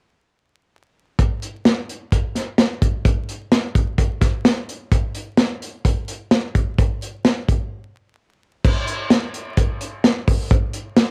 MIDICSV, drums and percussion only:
0, 0, Header, 1, 2, 480
1, 0, Start_track
1, 0, Tempo, 466563
1, 1219, Time_signature, 4, 2, 24, 8
1, 11428, End_track
2, 0, Start_track
2, 0, Title_t, "Drums"
2, 1222, Note_on_c, 9, 36, 93
2, 1223, Note_on_c, 9, 42, 71
2, 1325, Note_off_c, 9, 36, 0
2, 1326, Note_off_c, 9, 42, 0
2, 1464, Note_on_c, 9, 42, 55
2, 1567, Note_off_c, 9, 42, 0
2, 1701, Note_on_c, 9, 38, 93
2, 1701, Note_on_c, 9, 42, 71
2, 1804, Note_off_c, 9, 38, 0
2, 1804, Note_off_c, 9, 42, 0
2, 1949, Note_on_c, 9, 42, 56
2, 2052, Note_off_c, 9, 42, 0
2, 2183, Note_on_c, 9, 36, 76
2, 2184, Note_on_c, 9, 42, 81
2, 2286, Note_off_c, 9, 36, 0
2, 2287, Note_off_c, 9, 42, 0
2, 2422, Note_on_c, 9, 38, 29
2, 2426, Note_on_c, 9, 42, 64
2, 2525, Note_off_c, 9, 38, 0
2, 2529, Note_off_c, 9, 42, 0
2, 2656, Note_on_c, 9, 38, 85
2, 2660, Note_on_c, 9, 42, 76
2, 2759, Note_off_c, 9, 38, 0
2, 2763, Note_off_c, 9, 42, 0
2, 2901, Note_on_c, 9, 36, 81
2, 2903, Note_on_c, 9, 42, 58
2, 3004, Note_off_c, 9, 36, 0
2, 3005, Note_off_c, 9, 42, 0
2, 3139, Note_on_c, 9, 36, 96
2, 3141, Note_on_c, 9, 42, 71
2, 3242, Note_off_c, 9, 36, 0
2, 3244, Note_off_c, 9, 42, 0
2, 3382, Note_on_c, 9, 42, 58
2, 3485, Note_off_c, 9, 42, 0
2, 3617, Note_on_c, 9, 42, 78
2, 3618, Note_on_c, 9, 38, 92
2, 3720, Note_off_c, 9, 42, 0
2, 3721, Note_off_c, 9, 38, 0
2, 3860, Note_on_c, 9, 36, 80
2, 3862, Note_on_c, 9, 42, 55
2, 3962, Note_off_c, 9, 36, 0
2, 3965, Note_off_c, 9, 42, 0
2, 4097, Note_on_c, 9, 36, 75
2, 4100, Note_on_c, 9, 42, 76
2, 4200, Note_off_c, 9, 36, 0
2, 4203, Note_off_c, 9, 42, 0
2, 4332, Note_on_c, 9, 38, 30
2, 4336, Note_on_c, 9, 42, 65
2, 4337, Note_on_c, 9, 36, 80
2, 4435, Note_off_c, 9, 38, 0
2, 4439, Note_off_c, 9, 42, 0
2, 4440, Note_off_c, 9, 36, 0
2, 4577, Note_on_c, 9, 38, 90
2, 4581, Note_on_c, 9, 42, 76
2, 4680, Note_off_c, 9, 38, 0
2, 4684, Note_off_c, 9, 42, 0
2, 4824, Note_on_c, 9, 42, 59
2, 4927, Note_off_c, 9, 42, 0
2, 5057, Note_on_c, 9, 36, 95
2, 5060, Note_on_c, 9, 42, 74
2, 5160, Note_off_c, 9, 36, 0
2, 5163, Note_off_c, 9, 42, 0
2, 5294, Note_on_c, 9, 42, 60
2, 5397, Note_off_c, 9, 42, 0
2, 5528, Note_on_c, 9, 38, 100
2, 5528, Note_on_c, 9, 42, 77
2, 5631, Note_off_c, 9, 38, 0
2, 5631, Note_off_c, 9, 42, 0
2, 5783, Note_on_c, 9, 42, 62
2, 5885, Note_off_c, 9, 42, 0
2, 6017, Note_on_c, 9, 36, 76
2, 6017, Note_on_c, 9, 42, 78
2, 6120, Note_off_c, 9, 36, 0
2, 6120, Note_off_c, 9, 42, 0
2, 6256, Note_on_c, 9, 42, 64
2, 6359, Note_off_c, 9, 42, 0
2, 6494, Note_on_c, 9, 38, 91
2, 6497, Note_on_c, 9, 42, 79
2, 6597, Note_off_c, 9, 38, 0
2, 6600, Note_off_c, 9, 42, 0
2, 6739, Note_on_c, 9, 36, 79
2, 6739, Note_on_c, 9, 42, 60
2, 6842, Note_off_c, 9, 36, 0
2, 6842, Note_off_c, 9, 42, 0
2, 6979, Note_on_c, 9, 36, 105
2, 6982, Note_on_c, 9, 42, 74
2, 7082, Note_off_c, 9, 36, 0
2, 7084, Note_off_c, 9, 42, 0
2, 7222, Note_on_c, 9, 42, 57
2, 7325, Note_off_c, 9, 42, 0
2, 7455, Note_on_c, 9, 38, 99
2, 7455, Note_on_c, 9, 42, 78
2, 7558, Note_off_c, 9, 38, 0
2, 7558, Note_off_c, 9, 42, 0
2, 7700, Note_on_c, 9, 36, 79
2, 7704, Note_on_c, 9, 42, 61
2, 7803, Note_off_c, 9, 36, 0
2, 7807, Note_off_c, 9, 42, 0
2, 8894, Note_on_c, 9, 36, 108
2, 8895, Note_on_c, 9, 49, 85
2, 8997, Note_off_c, 9, 36, 0
2, 8998, Note_off_c, 9, 49, 0
2, 9130, Note_on_c, 9, 42, 62
2, 9233, Note_off_c, 9, 42, 0
2, 9366, Note_on_c, 9, 38, 99
2, 9366, Note_on_c, 9, 42, 82
2, 9468, Note_off_c, 9, 42, 0
2, 9469, Note_off_c, 9, 38, 0
2, 9610, Note_on_c, 9, 42, 64
2, 9713, Note_off_c, 9, 42, 0
2, 9848, Note_on_c, 9, 42, 83
2, 9850, Note_on_c, 9, 36, 79
2, 9951, Note_off_c, 9, 42, 0
2, 9953, Note_off_c, 9, 36, 0
2, 10092, Note_on_c, 9, 42, 69
2, 10194, Note_off_c, 9, 42, 0
2, 10330, Note_on_c, 9, 38, 98
2, 10334, Note_on_c, 9, 42, 81
2, 10433, Note_off_c, 9, 38, 0
2, 10437, Note_off_c, 9, 42, 0
2, 10573, Note_on_c, 9, 36, 81
2, 10573, Note_on_c, 9, 46, 63
2, 10676, Note_off_c, 9, 36, 0
2, 10676, Note_off_c, 9, 46, 0
2, 10812, Note_on_c, 9, 36, 105
2, 10815, Note_on_c, 9, 42, 76
2, 10915, Note_off_c, 9, 36, 0
2, 10917, Note_off_c, 9, 42, 0
2, 11044, Note_on_c, 9, 42, 63
2, 11147, Note_off_c, 9, 42, 0
2, 11282, Note_on_c, 9, 38, 101
2, 11282, Note_on_c, 9, 42, 82
2, 11385, Note_off_c, 9, 38, 0
2, 11385, Note_off_c, 9, 42, 0
2, 11428, End_track
0, 0, End_of_file